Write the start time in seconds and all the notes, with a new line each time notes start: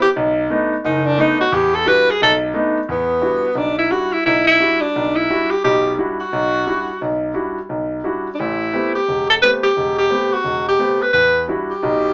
0.02 G4
0.16 B1
0.50 A3 B3 D4 D#4
0.84 F#1 D#4
1.06 D4
1.18 A3 B3 D4 D#4
1.41 F#4
1.52 E2 G4
1.75 A4
1.86 G3 D4 E4 F#4 B4
2.10 G#4
2.22 B1 A4
2.54 A3 B3 D4 D#4
2.89 E2 B3
3.22 G3 D4 E4 F#4
3.55 B1 D4
3.79 E4
3.91 G3 D4 E4 F#4
4.13 E4
4.26 B1 E4
4.48 E4
4.60 G3 D4 E4 F#4
4.81 D4
4.96 B1
5.16 E4
5.30 G3 D4 E4 F#4
5.51 G4
5.64 B1 B2 G4
5.97 G3 D4 E4 F#4
6.20 F#4
6.33 B1
6.67 G3 D4 E4 F#4
7.01 B1
7.34 G3 D4 E4 F#4
7.69 B1
8.04 G3 D4 E4 F#4
8.35 D4
8.39 A1 E4
8.73 A3 B3 C4 G4
8.95 G4
9.09 E1
9.30 A4
9.42 A3 B3 C4 G4 B4
9.63 G4
9.77 E1
9.98 G4
10.10 A3 B3 C4 G4
10.33 F#4
10.45 E1
10.68 G4
10.79 A3 B3 C4 G4
11.02 B4
11.13 E2 B4
11.48 G3 D4 E4 F#4
11.71 G4
11.83 B1 B2